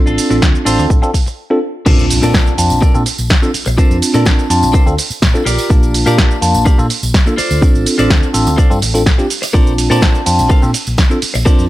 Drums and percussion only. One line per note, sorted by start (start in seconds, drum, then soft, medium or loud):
0.06 tambourine soft
0.06 shaker soft
0.18 open hi-hat loud
0.18 shaker medium
0.31 tambourine medium
0.31 shaker soft
0.42 kick loud
0.42 snare loud
0.42 tambourine medium
0.42 shaker soft
0.54 tambourine soft
0.54 shaker soft
0.66 open hi-hat loud
0.66 shaker medium
0.78 tambourine medium
0.78 shaker soft
0.90 kick loud
0.90 tambourine medium
0.90 shaker soft
1.03 tambourine soft
1.03 shaker soft
1.14 kick medium
1.14 open hi-hat loud
1.14 shaker medium
1.26 tambourine medium
1.26 shaker soft
1.86 kick loud
1.86 crash loud
1.86 tambourine medium
1.86 shaker soft
1.99 tambourine soft
1.99 shaker soft
2.10 open hi-hat loud
2.10 shaker medium
2.23 tambourine medium
2.23 shaker soft
2.34 kick loud
2.34 snare loud
2.34 tambourine medium
2.34 shaker soft
2.46 tambourine soft
2.46 shaker soft
2.58 open hi-hat loud
2.58 shaker medium
2.70 tambourine medium
2.70 shaker soft
2.82 kick loud
2.82 tambourine medium
2.82 shaker soft
2.94 tambourine soft
2.94 shaker soft
3.06 open hi-hat loud
3.06 shaker medium
3.18 tambourine medium
3.18 shaker soft
3.30 kick loud
3.30 snare loud
3.30 tambourine medium
3.30 shaker soft
3.42 tambourine soft
3.42 shaker soft
3.54 open hi-hat loud
3.54 shaker medium
3.66 tambourine medium
3.66 shaker soft
3.78 kick loud
3.78 tambourine medium
3.78 shaker soft
3.91 tambourine soft
3.91 shaker soft
4.02 open hi-hat loud
4.02 shaker medium
4.14 tambourine medium
4.14 shaker soft
4.25 kick loud
4.25 snare loud
4.25 tambourine medium
4.25 shaker soft
4.39 tambourine soft
4.39 shaker soft
4.50 open hi-hat loud
4.50 shaker medium
4.63 tambourine medium
4.63 shaker soft
4.73 kick loud
4.73 tambourine medium
4.73 shaker soft
4.87 tambourine soft
4.87 shaker soft
4.98 open hi-hat loud
4.98 shaker medium
5.11 tambourine medium
5.11 shaker soft
5.22 kick loud
5.22 snare loud
5.22 tambourine medium
5.22 shaker soft
5.35 tambourine soft
5.35 shaker soft
5.46 open hi-hat loud
5.46 shaker medium
5.58 open hi-hat medium
5.58 tambourine medium
5.58 shaker soft
5.70 kick loud
5.70 tambourine medium
5.70 shaker soft
5.83 tambourine soft
5.83 shaker soft
5.94 open hi-hat loud
5.94 shaker medium
6.07 tambourine medium
6.07 shaker soft
6.18 kick loud
6.18 snare loud
6.18 tambourine medium
6.18 shaker soft
6.31 tambourine soft
6.31 shaker soft
6.42 open hi-hat loud
6.42 shaker medium
6.54 tambourine medium
6.54 shaker soft
6.66 kick loud
6.66 tambourine medium
6.66 shaker soft
6.79 tambourine soft
6.79 shaker soft
6.90 open hi-hat loud
6.90 shaker medium
7.03 tambourine medium
7.03 shaker soft
7.14 kick loud
7.14 snare loud
7.14 shaker soft
7.26 tambourine soft
7.26 shaker soft
7.38 open hi-hat loud
7.38 shaker medium
7.51 tambourine medium
7.51 shaker soft
7.62 kick loud
7.62 tambourine medium
7.62 shaker soft
7.75 tambourine soft
7.75 shaker soft
7.86 open hi-hat loud
7.86 shaker medium
7.99 tambourine medium
7.99 shaker soft
8.10 kick loud
8.10 snare loud
8.10 tambourine medium
8.10 shaker soft
8.23 tambourine soft
8.23 shaker soft
8.34 open hi-hat loud
8.34 shaker medium
8.47 tambourine medium
8.47 shaker soft
8.58 kick loud
8.58 tambourine medium
8.58 shaker soft
8.71 tambourine soft
8.71 shaker soft
8.82 open hi-hat loud
8.82 shaker medium
8.95 tambourine medium
8.95 shaker soft
9.06 kick loud
9.06 snare loud
9.06 shaker soft
9.19 tambourine soft
9.19 shaker soft
9.30 open hi-hat loud
9.30 shaker medium
9.43 open hi-hat medium
9.43 tambourine medium
9.43 shaker soft
9.54 kick loud
9.54 tambourine medium
9.54 shaker soft
9.67 tambourine soft
9.67 shaker soft
9.78 open hi-hat loud
9.78 ride medium
9.78 shaker medium
9.91 tambourine medium
9.91 shaker soft
10.02 kick loud
10.02 snare loud
10.02 tambourine medium
10.02 shaker soft
10.15 tambourine soft
10.15 shaker soft
10.26 open hi-hat loud
10.26 ride medium
10.26 shaker medium
10.39 tambourine medium
10.39 shaker soft
10.49 kick loud
10.49 tambourine medium
10.49 shaker soft
10.62 tambourine soft
10.62 shaker soft
10.74 open hi-hat loud
10.74 ride medium
10.74 shaker medium
10.87 tambourine medium
10.87 shaker soft
10.98 kick loud
10.98 snare loud
10.98 tambourine medium
10.98 shaker soft
11.11 tambourine soft
11.11 shaker soft
11.22 open hi-hat loud
11.22 ride medium
11.22 shaker medium
11.35 tambourine medium
11.35 shaker soft
11.46 kick loud
11.46 tambourine medium
11.46 shaker soft
11.58 tambourine soft
11.58 shaker soft